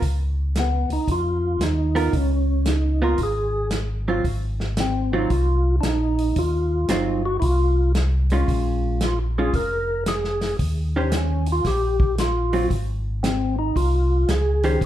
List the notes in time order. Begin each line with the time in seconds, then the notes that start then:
0.02 C#2, kick, open hi-hat
0.55 snare, closed hi-hat
0.60 B3
0.89 C#2 D#4, open hi-hat
1.08 F2, kick, open hi-hat
1.12 F4
1.59 D#2, snare, closed hi-hat
1.63 D#4
1.95 B3 F4 A#4, open hi-hat
2.13 C#2 C#4, kick, open hi-hat
2.66 D#4, snare, closed hi-hat
3.02 B3 F4 A#4
3.18 G#1, kick, open hi-hat
3.23 G#4
3.71 snare, closed hi-hat
4.08 F#3 C4 F4
4.24 G#1, kick, open hi-hat
4.60 snare
4.77 C4, snare, closed hi-hat
5.13 F#3 C4 D#4 F4
5.30 C2 F4, kick, open hi-hat
5.81 A#1 D4 D#4, snare, closed hi-hat
6.19 open hi-hat
6.36 D#2 F4, kick, open hi-hat
6.89 G1 F#3 C4 D#4 F4, snare, closed hi-hat
7.26 F#4
7.40 C2 E4, kick, open hi-hat
7.44 F4
7.95 snare, closed hi-hat
8.30 G#3 C#4 F4, open hi-hat
8.48 A#1, kick, open hi-hat
9.01 F4, snare, closed hi-hat
9.38 G#3 C#4 F4 G#4
9.53 F1 A#4, kick, open hi-hat
10.06 G#4, snare, closed hi-hat
10.24 snare
10.41 snare, open hi-hat
10.59 D#2, kick, open hi-hat
10.96 D#3 C#4 G4 C5
11.12 snare, closed hi-hat
11.17 C#4
11.46 open hi-hat
11.52 F4
11.64 A#1 G4, kick, snare, open hi-hat
12.00 kick
12.18 F4, snare, closed hi-hat
12.53 F#3 C4 F4, open hi-hat
12.70 G#1, kick, open hi-hat
13.23 C4, snare, closed hi-hat
13.59 D#4
13.76 C2 F4, kick, open hi-hat
14.28 C#2 G#4, snare, closed hi-hat
14.63 D#3 C#4 G4 C5, open hi-hat
14.81 D#2, kick, open hi-hat